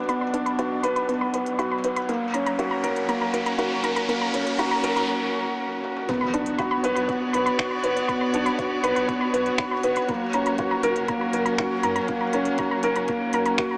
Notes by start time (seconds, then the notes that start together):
Already playing: B2 F#3 B3 D4 F#4 B4, riser
0.09 B3 B5, closed hi-hat
0.21 B5
0.33 D4 B4, closed hi-hat
0.46 B5, closed hi-hat
0.59 F#4 B4, closed hi-hat
0.83 B4 B5, closed hi-hat
0.96 B5, closed hi-hat
1.08 B3 B4, closed hi-hat
1.21 B5
1.33 B4, closed hi-hat
1.46 closed hi-hat
1.59 F#4 B5, closed hi-hat
1.71 B5
1.84 B4, closed hi-hat
1.96 B5, closed hi-hat
2.09 A#3 A#4, closed hi-hat
2.30 C#4 A#5
2.34 C#4, closed hi-hat
2.46 A#5, closed hi-hat
2.53 A#4
2.58 F#4 A#4, closed hi-hat
2.71 A#5
2.83 A#4, closed hi-hat
2.96 closed hi-hat
3.08 A#3 A#5, closed hi-hat
3.21 A#5
3.33 A#4, closed hi-hat
3.46 A#5, closed hi-hat
3.58 F#4 A#4, closed hi-hat
3.83 A#4 A#5, closed hi-hat
3.96 A#5, closed hi-hat
4.08 A#3 A#4, closed hi-hat
4.21 A#5
4.33 C#4 A#4, closed hi-hat
4.47 closed hi-hat
4.59 F#4 A#5, closed hi-hat
4.71 A#5
4.83 A#4, closed hi-hat
4.96 A#5, closed hi-hat
5.84 high tom
5.97 mid tom
6.09 B3 B4, kick, closed hi-hat, impact
6.21 B5
6.34 B1 D4 B4, closed hi-hat
6.46 C#5, closed hi-hat
6.58 F#4 B5, kick, closed hi-hat
6.71 B5
6.83 B1 B4 D5, closed hi-hat
6.95 B1 B5, closed hi-hat
7.08 B3 B4, kick, closed hi-hat
7.33 B1 B4 B5, closed hi-hat
7.46 B5, closed hi-hat
7.59 F#4 B4, finger snap, kick, closed hi-hat
7.71 B5
7.83 F#1 B4, closed hi-hat
7.97 closed hi-hat
8.08 B3 B5, kick, closed hi-hat
8.21 B5
8.34 B1 D4 B4, closed hi-hat
8.46 B5, closed hi-hat
8.58 F#4 B4, kick, closed hi-hat
8.83 B1 B4 B5, closed hi-hat
8.96 B1 B5, closed hi-hat
9.08 B3 B4, kick, closed hi-hat
9.21 B5
9.33 B1 B4, closed hi-hat
9.46 closed hi-hat
9.58 F#4 B5, finger snap, kick, closed hi-hat
9.71 B5
9.83 F#1 B4, closed hi-hat
9.96 B5, closed hi-hat
10.09 F#3 A#3 A#4, kick, closed hi-hat
10.21 A#4
10.26 C#4
10.33 F#1 C#4 A#5, closed hi-hat
10.46 A#5, closed hi-hat
10.58 F#4 A#4, kick, closed hi-hat
10.71 A#5
10.83 F#1 A#4, closed hi-hat
10.96 F#1, closed hi-hat
11.08 A#3 A#5, kick, closed hi-hat
11.21 A#5
11.33 F#1 A#4, closed hi-hat
11.46 A#5, closed hi-hat
11.58 F#4 A#4, finger snap, kick, closed hi-hat
11.83 F#2 A#4 A#5, closed hi-hat
11.96 A#5, closed hi-hat
12.08 A#3 A#4, kick, closed hi-hat
12.21 A#5
12.33 F#1 C#4 A#4, closed hi-hat
12.45 closed hi-hat
12.58 F#4 A#5, kick, closed hi-hat
12.71 A#5
12.83 F#1 A#4, closed hi-hat
12.96 F#1 A#5, closed hi-hat
13.08 A#3 A#4, kick, closed hi-hat
13.33 F#1 A#4 A#5, closed hi-hat
13.46 A#5, closed hi-hat
13.58 F#4 A#4, finger snap, kick, closed hi-hat
13.71 A#5